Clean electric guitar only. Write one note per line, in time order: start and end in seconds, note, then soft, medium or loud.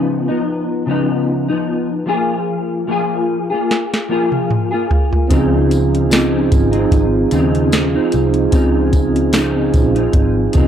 0.00 0.28 C#3 medium
0.00 0.28 F3 medium
0.00 0.29 B3 medium
0.00 0.27 D#4 medium
0.28 0.86 F3 medium
0.28 0.87 B3 medium
0.28 0.87 D#4 medium
0.86 1.49 C#3 medium
0.86 1.49 F3 medium
0.86 1.49 B3 medium
0.86 1.47 D#4 medium
1.48 2.05 F3 medium
1.48 2.07 B3 medium
1.48 2.07 D#4 medium
2.06 2.87 F3 medium
2.06 2.87 A#3 medium
2.06 2.89 F4 medium
2.06 2.91 G#4 medium
2.87 3.51 F3 medium
2.87 3.51 A#3 medium
2.87 3.50 F4 medium
2.87 3.49 G#4 medium
3.50 4.09 A#3 medium
3.50 4.10 F4 medium
3.50 4.09 G#4 medium
4.09 4.72 F3 medium
4.09 4.72 A#3 medium
4.09 4.71 F4 medium
4.09 4.70 G#4 medium
4.71 5.31 A#3 medium
4.71 5.31 F4 medium
4.71 5.30 G#4 medium
5.29 6.08 C#3 medium
5.29 6.10 F3 medium
5.29 6.11 C4 medium
5.29 6.13 D#4 medium
6.10 6.73 C#3 medium
6.10 6.74 F3 medium
6.10 6.72 C4 medium
6.10 6.70 D#4 medium
6.71 7.31 F3 medium
6.71 7.32 C4 medium
6.71 7.31 D#4 medium
7.32 7.95 C#3 medium
7.32 7.95 F3 medium
7.32 7.95 C4 medium
7.32 7.94 D#4 medium
7.95 8.51 F3 medium
7.95 8.53 C4 medium
7.95 8.53 D#4 medium
8.51 9.31 C#3 medium
8.51 9.32 F3 medium
8.51 9.33 C4 medium
8.51 9.35 D#4 medium
9.32 9.96 C#3 medium
9.32 9.96 F3 medium
9.32 9.96 C4 medium
9.32 9.94 D#4 medium
9.95 10.53 F3 medium
9.95 10.54 C4 medium
9.95 10.54 D#4 medium
10.53 10.68 C#3 medium
10.53 10.68 F3 medium
10.53 10.68 C4 medium
10.53 10.68 D#4 medium